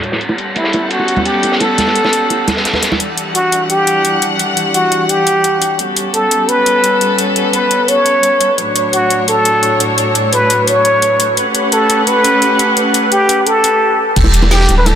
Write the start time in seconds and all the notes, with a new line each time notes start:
Already playing: A2 F#3 D4 C#5
0.03 closed hi-hat, ride
0.12 snare, high bongo
0.21 G3 B3 C#4 A4 F#5, closed hi-hat, ride
0.29 high bongo
0.38 closed hi-hat, ride
0.56 E4, closed hi-hat, ride, high bongo
0.64 snare
0.73 closed hi-hat, ride, high bongo
0.90 F#4, closed hi-hat, ride
0.99 high bongo
1.08 closed hi-hat, ride
1.17 high bongo, high conga
1.25 G4, closed hi-hat, ride
1.34 ride
1.43 closed hi-hat, ride, high bongo
1.52 snare
1.60 A4, closed hi-hat, ride, high bongo
1.78 snare, closed hi-hat, ride, high conga
1.87 snare, high bongo
1.95 closed hi-hat, ride
2.04 snare, high bongo
2.13 closed hi-hat, ride
2.30 closed hi-hat, high bongo
2.47 snare, closed hi-hat, ride, high bongo, high conga
2.57 snare, ride
2.65 snare, closed hi-hat, ride
2.73 snare, ride, high bongo, high conga
2.82 snare, closed hi-hat, ride
2.91 snare, high bongo, high conga
3.00 E3 G3 D4 F#5, closed hi-hat
3.18 closed hi-hat
3.35 F#4, closed hi-hat
3.52 closed hi-hat
3.70 G4, closed hi-hat
3.87 closed hi-hat
4.05 closed hi-hat
4.22 closed hi-hat
4.39 closed hi-hat
4.57 closed hi-hat
4.74 F#4, closed hi-hat
4.92 closed hi-hat
5.09 G4, closed hi-hat
5.27 closed hi-hat
5.44 closed hi-hat
5.62 closed hi-hat
5.79 G3 B3 C#4 A4, closed hi-hat
5.96 closed hi-hat
6.14 A4, closed hi-hat
6.31 closed hi-hat
6.49 B4, closed hi-hat
6.66 closed hi-hat
6.84 closed hi-hat
7.01 closed hi-hat
7.18 closed hi-hat
7.36 closed hi-hat
7.53 B4, closed hi-hat
7.71 closed hi-hat
7.88 C#5, closed hi-hat
8.06 closed hi-hat
8.23 closed hi-hat
8.41 closed hi-hat
8.58 A2 F#3 D4 C#5, closed hi-hat
8.76 closed hi-hat
8.93 F#4, closed hi-hat
9.10 closed hi-hat
9.28 A4, closed hi-hat
9.45 closed hi-hat
9.63 closed hi-hat
9.80 closed hi-hat
9.98 closed hi-hat
10.15 closed hi-hat
10.33 B4, closed hi-hat
10.50 closed hi-hat
10.67 C#5, closed hi-hat
10.85 closed hi-hat
11.02 closed hi-hat
11.20 closed hi-hat
11.37 A3 C#4 G4 B4 F#5, closed hi-hat
11.55 closed hi-hat
11.72 A4, closed hi-hat
11.90 closed hi-hat
12.07 B4, closed hi-hat
12.24 closed hi-hat
12.42 closed hi-hat
12.59 closed hi-hat
12.77 closed hi-hat
12.94 closed hi-hat
13.12 G4, closed hi-hat
13.29 closed hi-hat
13.46 A4, closed hi-hat
13.64 closed hi-hat
14.16 E1 G3 D4 G4, kick, closed hi-hat, ride, crash
14.24 high bongo
14.34 closed hi-hat, ride
14.42 snare, high bongo
14.51 G4, snare, closed hi-hat, ride
14.60 snare
14.69 D1, closed hi-hat, ride, high bongo
14.78 B4
14.86 A4, closed hi-hat, ride, high bongo